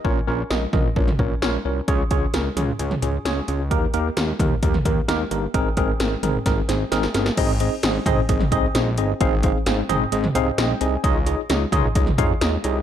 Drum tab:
CC |----------------|----------------|----------------|----------------|
HH |----------------|x-x-x-x-x-x-x-x-|x-x-x-x-x-x-x-x-|x-x-x-x-x-x-x-x-|
SD |----o-------o---|----o-------o---|----o-------o---|----o---o-o-oooo|
T2 |------o--o------|------o--o------|------o--o------|------o---------|
BD |o-----o-o-o-----|o-o-------------|o-----o-o-o-----|o-o-----o-------|

CC |x---------------|----------------|----------------|
HH |x-x-x-x-x-x-x-x-|x-x-x-x-x-x-x-x-|x-x-x-x-x-x-x-x-|
SD |----o-------o---|----o-------o---|----o-------o---|
T2 |------o--o------|------o--o------|------o--o------|
BD |o-----o-o-o-----|o-o-------------|o-----o-o-o-----|